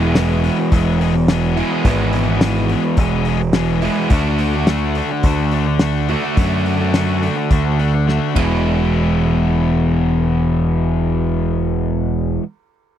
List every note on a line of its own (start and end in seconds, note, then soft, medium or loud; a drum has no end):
0.00 0.48 E1 medium
0.00 0.15 E2 medium
0.00 0.15 B2 medium
0.00 1.55 E3 medium
0.00 0.17 E3 medium
0.00 1.55 G#3 medium
0.00 0.17 G#3 medium
0.00 1.56 B3 loud
0.00 0.17 B3 medium
0.00 1.55 E4 medium
0.00 0.17 G#4 medium
0.15 1.29 E2 medium
0.15 0.73 B2 medium
0.15 0.44 E3 medium
0.15 0.44 G#3 medium
0.15 0.45 B3 loud
0.15 0.46 G#4 medium
0.15 snare loud
0.15 open hi-hat medium
0.44 0.59 E3 medium
0.44 0.58 G#3 medium
0.44 0.58 B3 medium
0.44 0.58 G#4 medium
0.44 open hi-hat soft
0.59 muted overdriven electric guitar stroke soft
0.72 1.61 E1 medium
0.72 0.99 E3 medium
0.72 1.00 G#3 medium
0.72 1.01 B3 medium
0.72 1.01 G#4 medium
0.72 kick medium
0.72 open hi-hat medium
1.00 1.15 E3 medium
1.00 1.15 G#3 medium
1.00 1.14 B3 medium
1.00 1.14 G#4 medium
1.00 open hi-hat soft
1.15 muted overdriven electric guitar stroke soft
1.28 1.84 E2 medium
1.28 1.84 B2 medium
1.28 1.56 E3 medium
1.28 1.57 G#3 medium
1.28 1.58 B3 medium
1.28 1.58 G#4 medium
1.28 snare loud
1.28 open hi-hat medium
1.57 1.73 E3 medium
1.57 1.72 G#3 medium
1.57 1.71 B3 medium
1.57 1.83 E4 medium
1.57 1.70 G#4 medium
1.57 open hi-hat soft
1.72 1.85 E3 medium
1.72 1.85 G#3 medium
1.72 1.85 B3 medium
1.72 1.86 G#4 medium
1.85 2.74 G#1 medium
1.85 2.40 E2 medium
1.85 2.41 B2 medium
1.85 2.29 E3 medium
1.85 2.29 G#3 medium
1.85 2.28 B3 medium
1.85 3.81 E4 medium
1.85 2.27 G#4 loud
1.85 kick medium
1.85 open hi-hat medium
2.13 open hi-hat soft
2.28 2.41 E3 soft
2.28 2.41 G#3 medium
2.28 2.41 B3 medium
2.28 2.42 G#4 medium
2.41 2.98 E2 medium
2.41 2.98 B2 medium
2.41 2.69 E3 medium
2.41 2.70 G#3 loud
2.41 2.71 B3 loud
2.41 2.71 G#4 medium
2.41 snare loud
2.41 open hi-hat medium
2.69 2.84 E3 medium
2.69 2.84 G#3 medium
2.69 2.84 B3 medium
2.69 2.84 G#4 medium
2.69 open hi-hat soft
2.85 muted overdriven electric guitar stroke soft
2.97 3.87 E1 medium
2.97 3.25 E3 medium
2.97 3.27 G#3 medium
2.97 3.27 B3 medium
2.97 3.28 G#4 medium
2.97 kick medium
2.97 open hi-hat medium
3.25 3.40 E3 medium
3.25 3.41 G#3 medium
3.25 3.40 B3 medium
3.25 open hi-hat soft
3.29 3.40 G#4 medium
3.41 muted overdriven electric guitar stroke soft
3.53 4.09 E2 medium
3.53 4.10 B2 medium
3.53 3.83 E3 medium
3.53 3.83 G#3 medium
3.53 3.84 B3 medium
3.53 3.85 G#4 loud
3.53 snare loud
3.53 open hi-hat medium
3.82 3.99 E3 medium
3.82 3.99 G#3 medium
3.82 3.98 B3 medium
3.82 4.09 E4 medium
3.82 open hi-hat medium
3.86 3.97 G#4 medium
3.98 4.11 E3 medium
3.98 4.11 G#3 medium
3.98 4.10 B3 medium
3.98 4.10 G#4 medium
4.10 5.00 D2 medium
4.10 4.69 D3 medium
4.10 4.56 A3 medium
4.10 kick loud
4.10 open hi-hat medium
4.14 4.55 D4 medium
4.14 4.54 F#4 medium
4.39 open hi-hat medium
4.55 4.69 A3 medium
4.55 4.70 D4 medium
4.55 4.71 F#4 medium
4.67 4.96 D3 medium
4.67 4.97 A3 medium
4.67 4.98 D4 medium
4.67 snare loud
4.67 open hi-hat medium
4.71 4.98 F#4 loud
4.95 5.24 D3 medium
4.95 5.11 A3 medium
4.95 5.11 D4 medium
4.95 5.10 F#4 medium
4.95 open hi-hat medium
5.11 muted overdriven electric guitar stroke soft
5.23 6.14 D2 medium
5.23 5.52 D3 medium
5.23 5.53 A3 medium
5.23 5.54 D4 medium
5.23 5.54 F#4 medium
5.23 kick medium
5.23 open hi-hat medium
5.51 5.79 D3 medium
5.51 5.67 A3 medium
5.51 5.66 D4 medium
5.51 5.66 F#4 medium
5.51 open hi-hat soft
5.67 muted overdriven electric guitar stroke soft
5.79 6.07 D3 medium
5.79 6.08 A3 medium
5.79 6.08 D4 medium
5.79 6.09 F#4 loud
5.79 snare loud
5.79 open hi-hat medium
6.09 6.35 D3 medium
6.09 6.24 A3 medium
6.09 6.24 D4 medium
6.09 6.22 F#4 medium
6.09 open hi-hat soft
6.24 6.37 A3 medium
6.24 6.37 D4 medium
6.24 6.38 F#4 medium
6.37 7.27 F#2 medium
6.37 6.93 D3 medium
6.37 6.81 A3 medium
6.37 6.80 D4 medium
6.37 6.79 F#4 medium
6.37 kick loud
6.37 open hi-hat medium
6.66 open hi-hat soft
6.80 6.93 A3 medium
6.80 6.94 D4 medium
6.80 6.95 F#4 medium
6.94 7.20 D3 medium
6.94 7.21 A3 medium
6.94 7.22 D4 medium
6.94 7.22 F#4 loud
6.94 snare loud
6.94 open hi-hat medium
7.22 7.49 D3 medium
7.22 7.37 A3 medium
7.22 7.36 D4 medium
7.22 7.36 F#4 medium
7.22 open hi-hat soft
7.37 muted overdriven electric guitar stroke soft
7.51 8.18 D2 medium
7.51 7.77 D3 medium
7.51 7.78 A3 medium
7.51 7.79 D4 medium
7.51 7.79 F#4 medium
7.51 kick loud
7.51 open hi-hat medium
7.78 8.06 D3 medium
7.78 7.93 A3 medium
7.78 7.93 D4 medium
7.78 7.93 F#4 medium
7.78 open hi-hat soft
7.94 muted overdriven electric guitar stroke soft
8.07 8.36 D3 medium
8.07 8.37 A3 medium
8.07 8.37 D4 medium
8.07 8.37 F#4 medium
8.07 snare medium
8.35 12.38 E1 medium
8.35 12.41 E2 medium
8.35 12.42 B2 medium
8.35 12.42 E3 medium
8.35 12.43 G#3 medium
8.35 12.43 B3 medium
8.35 kick medium
8.35 ride medium
8.39 12.44 E4 loud